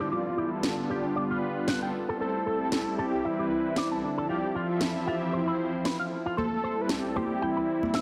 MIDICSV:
0, 0, Header, 1, 6, 480
1, 0, Start_track
1, 0, Tempo, 521739
1, 109, Time_signature, 4, 2, 24, 8
1, 7373, End_track
2, 0, Start_track
2, 0, Title_t, "Clean electric guitar"
2, 0, Program_c, 0, 27
2, 106, Note_on_c, 0, 67, 71
2, 174, Note_off_c, 0, 67, 0
2, 344, Note_on_c, 0, 67, 68
2, 447, Note_off_c, 0, 67, 0
2, 828, Note_on_c, 0, 67, 92
2, 896, Note_off_c, 0, 67, 0
2, 1067, Note_on_c, 0, 74, 69
2, 1135, Note_off_c, 0, 74, 0
2, 1202, Note_on_c, 0, 65, 65
2, 1255, Note_off_c, 0, 65, 0
2, 1547, Note_on_c, 0, 71, 74
2, 1648, Note_off_c, 0, 71, 0
2, 1679, Note_on_c, 0, 79, 66
2, 1734, Note_off_c, 0, 79, 0
2, 1922, Note_on_c, 0, 69, 87
2, 2002, Note_off_c, 0, 69, 0
2, 2028, Note_on_c, 0, 69, 70
2, 2095, Note_off_c, 0, 69, 0
2, 2266, Note_on_c, 0, 69, 66
2, 2368, Note_off_c, 0, 69, 0
2, 2745, Note_on_c, 0, 69, 90
2, 2814, Note_off_c, 0, 69, 0
2, 2988, Note_on_c, 0, 76, 70
2, 3056, Note_off_c, 0, 76, 0
2, 3119, Note_on_c, 0, 67, 67
2, 3174, Note_off_c, 0, 67, 0
2, 3469, Note_on_c, 0, 74, 72
2, 3570, Note_off_c, 0, 74, 0
2, 3602, Note_on_c, 0, 81, 67
2, 3655, Note_off_c, 0, 81, 0
2, 3842, Note_on_c, 0, 69, 90
2, 3922, Note_off_c, 0, 69, 0
2, 3948, Note_on_c, 0, 65, 73
2, 4015, Note_off_c, 0, 65, 0
2, 4186, Note_on_c, 0, 65, 66
2, 4288, Note_off_c, 0, 65, 0
2, 4666, Note_on_c, 0, 65, 88
2, 4735, Note_off_c, 0, 65, 0
2, 4904, Note_on_c, 0, 72, 70
2, 4974, Note_off_c, 0, 72, 0
2, 5038, Note_on_c, 0, 64, 66
2, 5093, Note_off_c, 0, 64, 0
2, 5383, Note_on_c, 0, 71, 74
2, 5486, Note_off_c, 0, 71, 0
2, 5515, Note_on_c, 0, 77, 65
2, 5572, Note_off_c, 0, 77, 0
2, 5757, Note_on_c, 0, 65, 89
2, 5839, Note_off_c, 0, 65, 0
2, 5862, Note_on_c, 0, 72, 73
2, 5933, Note_off_c, 0, 72, 0
2, 6105, Note_on_c, 0, 72, 66
2, 6208, Note_off_c, 0, 72, 0
2, 6585, Note_on_c, 0, 72, 91
2, 6654, Note_off_c, 0, 72, 0
2, 6826, Note_on_c, 0, 79, 74
2, 6894, Note_off_c, 0, 79, 0
2, 6962, Note_on_c, 0, 71, 67
2, 7016, Note_off_c, 0, 71, 0
2, 7306, Note_on_c, 0, 76, 75
2, 7373, Note_off_c, 0, 76, 0
2, 7373, End_track
3, 0, Start_track
3, 0, Title_t, "Analog synth lead"
3, 0, Program_c, 1, 81
3, 0, Note_on_c, 1, 62, 85
3, 110, Note_on_c, 1, 65, 93
3, 124, Note_off_c, 1, 62, 0
3, 355, Note_on_c, 1, 64, 84
3, 368, Note_off_c, 1, 65, 0
3, 593, Note_on_c, 1, 62, 78
3, 606, Note_off_c, 1, 64, 0
3, 1791, Note_off_c, 1, 62, 0
3, 2034, Note_on_c, 1, 69, 112
3, 2749, Note_on_c, 1, 67, 96
3, 2763, Note_off_c, 1, 69, 0
3, 2994, Note_on_c, 1, 64, 95
3, 3008, Note_off_c, 1, 67, 0
3, 3716, Note_on_c, 1, 62, 84
3, 3729, Note_off_c, 1, 64, 0
3, 3947, Note_off_c, 1, 62, 0
3, 3953, Note_on_c, 1, 67, 99
3, 4191, Note_on_c, 1, 65, 88
3, 4205, Note_off_c, 1, 67, 0
3, 4431, Note_on_c, 1, 64, 82
3, 4445, Note_off_c, 1, 65, 0
3, 5630, Note_off_c, 1, 64, 0
3, 5867, Note_on_c, 1, 69, 111
3, 6268, Note_on_c, 1, 71, 90
3, 6281, Note_off_c, 1, 69, 0
3, 6342, Note_on_c, 1, 69, 90
3, 6356, Note_off_c, 1, 71, 0
3, 6430, Note_on_c, 1, 67, 86
3, 6444, Note_off_c, 1, 69, 0
3, 6518, Note_on_c, 1, 69, 89
3, 6532, Note_off_c, 1, 67, 0
3, 6592, Note_on_c, 1, 67, 97
3, 6606, Note_off_c, 1, 69, 0
3, 6830, Note_on_c, 1, 64, 96
3, 6844, Note_off_c, 1, 67, 0
3, 7373, Note_off_c, 1, 64, 0
3, 7373, End_track
4, 0, Start_track
4, 0, Title_t, "Analog synth pad"
4, 0, Program_c, 2, 89
4, 0, Note_on_c, 2, 55, 78
4, 1, Note_on_c, 2, 59, 69
4, 5, Note_on_c, 2, 65, 71
4, 7, Note_on_c, 2, 74, 86
4, 200, Note_off_c, 2, 55, 0
4, 201, Note_off_c, 2, 59, 0
4, 203, Note_off_c, 2, 65, 0
4, 204, Note_off_c, 2, 74, 0
4, 345, Note_on_c, 2, 55, 71
4, 348, Note_on_c, 2, 59, 66
4, 351, Note_on_c, 2, 65, 65
4, 353, Note_on_c, 2, 69, 79
4, 689, Note_off_c, 2, 55, 0
4, 690, Note_off_c, 2, 59, 0
4, 692, Note_off_c, 2, 65, 0
4, 693, Note_off_c, 2, 69, 0
4, 717, Note_on_c, 2, 55, 73
4, 720, Note_on_c, 2, 59, 69
4, 723, Note_on_c, 2, 65, 68
4, 728, Note_on_c, 2, 67, 81
4, 1041, Note_off_c, 2, 55, 0
4, 1042, Note_off_c, 2, 59, 0
4, 1044, Note_off_c, 2, 65, 0
4, 1046, Note_off_c, 2, 67, 0
4, 1065, Note_on_c, 2, 55, 84
4, 1069, Note_on_c, 2, 59, 78
4, 1072, Note_on_c, 2, 65, 79
4, 1075, Note_on_c, 2, 71, 96
4, 1521, Note_off_c, 2, 55, 0
4, 1524, Note_off_c, 2, 59, 0
4, 1525, Note_off_c, 2, 65, 0
4, 1527, Note_off_c, 2, 71, 0
4, 1548, Note_on_c, 2, 55, 68
4, 1552, Note_on_c, 2, 59, 64
4, 1555, Note_on_c, 2, 65, 64
4, 1557, Note_on_c, 2, 69, 74
4, 1756, Note_off_c, 2, 55, 0
4, 1758, Note_off_c, 2, 59, 0
4, 1759, Note_off_c, 2, 65, 0
4, 1761, Note_off_c, 2, 69, 0
4, 1921, Note_on_c, 2, 55, 79
4, 1925, Note_on_c, 2, 60, 75
4, 1928, Note_on_c, 2, 64, 73
4, 1930, Note_on_c, 2, 72, 88
4, 2121, Note_off_c, 2, 55, 0
4, 2123, Note_off_c, 2, 60, 0
4, 2125, Note_off_c, 2, 64, 0
4, 2125, Note_off_c, 2, 72, 0
4, 2266, Note_on_c, 2, 55, 70
4, 2269, Note_on_c, 2, 60, 63
4, 2272, Note_on_c, 2, 64, 65
4, 2275, Note_on_c, 2, 69, 77
4, 2609, Note_off_c, 2, 55, 0
4, 2611, Note_off_c, 2, 60, 0
4, 2612, Note_off_c, 2, 64, 0
4, 2614, Note_off_c, 2, 69, 0
4, 2638, Note_on_c, 2, 55, 75
4, 2642, Note_on_c, 2, 60, 67
4, 2647, Note_on_c, 2, 64, 67
4, 2650, Note_on_c, 2, 67, 82
4, 2961, Note_off_c, 2, 55, 0
4, 2963, Note_off_c, 2, 60, 0
4, 2965, Note_off_c, 2, 64, 0
4, 2967, Note_off_c, 2, 67, 0
4, 2985, Note_on_c, 2, 55, 89
4, 2988, Note_on_c, 2, 60, 79
4, 2993, Note_on_c, 2, 64, 80
4, 2995, Note_on_c, 2, 71, 96
4, 3442, Note_off_c, 2, 55, 0
4, 3443, Note_off_c, 2, 60, 0
4, 3445, Note_off_c, 2, 64, 0
4, 3446, Note_off_c, 2, 71, 0
4, 3466, Note_on_c, 2, 55, 70
4, 3469, Note_on_c, 2, 60, 62
4, 3472, Note_on_c, 2, 64, 64
4, 3474, Note_on_c, 2, 69, 76
4, 3675, Note_off_c, 2, 55, 0
4, 3676, Note_off_c, 2, 60, 0
4, 3678, Note_off_c, 2, 64, 0
4, 3679, Note_off_c, 2, 69, 0
4, 3839, Note_on_c, 2, 53, 80
4, 3842, Note_on_c, 2, 60, 70
4, 3844, Note_on_c, 2, 64, 74
4, 3848, Note_on_c, 2, 74, 85
4, 4040, Note_off_c, 2, 53, 0
4, 4042, Note_off_c, 2, 60, 0
4, 4043, Note_off_c, 2, 64, 0
4, 4044, Note_off_c, 2, 74, 0
4, 4182, Note_on_c, 2, 53, 70
4, 4185, Note_on_c, 2, 60, 63
4, 4187, Note_on_c, 2, 76, 65
4, 4191, Note_on_c, 2, 69, 78
4, 4527, Note_off_c, 2, 53, 0
4, 4529, Note_off_c, 2, 60, 0
4, 4530, Note_off_c, 2, 76, 0
4, 4532, Note_off_c, 2, 69, 0
4, 4556, Note_on_c, 2, 53, 75
4, 4559, Note_on_c, 2, 60, 68
4, 4561, Note_on_c, 2, 76, 68
4, 4566, Note_on_c, 2, 67, 83
4, 4880, Note_off_c, 2, 53, 0
4, 4882, Note_off_c, 2, 60, 0
4, 4883, Note_off_c, 2, 76, 0
4, 4885, Note_off_c, 2, 67, 0
4, 4900, Note_on_c, 2, 53, 87
4, 4902, Note_on_c, 2, 60, 80
4, 4906, Note_on_c, 2, 64, 79
4, 4910, Note_on_c, 2, 72, 96
4, 5123, Note_off_c, 2, 53, 0
4, 5125, Note_off_c, 2, 60, 0
4, 5126, Note_off_c, 2, 64, 0
4, 5128, Note_off_c, 2, 72, 0
4, 5141, Note_on_c, 2, 53, 68
4, 5144, Note_on_c, 2, 60, 65
4, 5147, Note_on_c, 2, 64, 62
4, 5149, Note_on_c, 2, 72, 76
4, 5285, Note_off_c, 2, 53, 0
4, 5287, Note_off_c, 2, 60, 0
4, 5288, Note_off_c, 2, 64, 0
4, 5289, Note_off_c, 2, 72, 0
4, 5513, Note_on_c, 2, 53, 73
4, 5518, Note_on_c, 2, 60, 66
4, 5520, Note_on_c, 2, 64, 67
4, 5523, Note_on_c, 2, 69, 77
4, 5632, Note_off_c, 2, 53, 0
4, 5634, Note_off_c, 2, 60, 0
4, 5636, Note_off_c, 2, 64, 0
4, 5637, Note_off_c, 2, 69, 0
4, 6104, Note_on_c, 2, 55, 69
4, 6106, Note_on_c, 2, 60, 64
4, 6108, Note_on_c, 2, 64, 64
4, 6112, Note_on_c, 2, 69, 78
4, 6448, Note_off_c, 2, 55, 0
4, 6449, Note_off_c, 2, 60, 0
4, 6450, Note_off_c, 2, 64, 0
4, 6452, Note_off_c, 2, 69, 0
4, 6477, Note_on_c, 2, 55, 77
4, 6479, Note_on_c, 2, 60, 69
4, 6483, Note_on_c, 2, 64, 68
4, 6487, Note_on_c, 2, 67, 80
4, 6801, Note_off_c, 2, 55, 0
4, 6802, Note_off_c, 2, 60, 0
4, 6803, Note_off_c, 2, 64, 0
4, 6806, Note_off_c, 2, 67, 0
4, 6827, Note_on_c, 2, 55, 85
4, 6829, Note_on_c, 2, 60, 81
4, 6832, Note_on_c, 2, 64, 80
4, 7283, Note_off_c, 2, 55, 0
4, 7283, Note_off_c, 2, 60, 0
4, 7285, Note_off_c, 2, 64, 0
4, 7306, Note_on_c, 2, 55, 71
4, 7309, Note_on_c, 2, 60, 66
4, 7313, Note_on_c, 2, 64, 63
4, 7315, Note_on_c, 2, 69, 76
4, 7373, Note_off_c, 2, 55, 0
4, 7373, Note_off_c, 2, 60, 0
4, 7373, Note_off_c, 2, 64, 0
4, 7373, Note_off_c, 2, 69, 0
4, 7373, End_track
5, 0, Start_track
5, 0, Title_t, "Downlifter"
5, 0, Program_c, 3, 103
5, 0, Note_on_c, 3, 60, 64
5, 2028, Note_off_c, 3, 60, 0
5, 7373, End_track
6, 0, Start_track
6, 0, Title_t, "Drums"
6, 583, Note_on_c, 9, 38, 111
6, 675, Note_off_c, 9, 38, 0
6, 1543, Note_on_c, 9, 38, 109
6, 1635, Note_off_c, 9, 38, 0
6, 2502, Note_on_c, 9, 38, 110
6, 2594, Note_off_c, 9, 38, 0
6, 3462, Note_on_c, 9, 38, 102
6, 3554, Note_off_c, 9, 38, 0
6, 4423, Note_on_c, 9, 38, 105
6, 4515, Note_off_c, 9, 38, 0
6, 5383, Note_on_c, 9, 38, 101
6, 5475, Note_off_c, 9, 38, 0
6, 5871, Note_on_c, 9, 63, 76
6, 5963, Note_off_c, 9, 63, 0
6, 6342, Note_on_c, 9, 38, 102
6, 6434, Note_off_c, 9, 38, 0
6, 6587, Note_on_c, 9, 63, 62
6, 6679, Note_off_c, 9, 63, 0
6, 7204, Note_on_c, 9, 63, 85
6, 7296, Note_off_c, 9, 63, 0
6, 7303, Note_on_c, 9, 38, 100
6, 7373, Note_off_c, 9, 38, 0
6, 7373, End_track
0, 0, End_of_file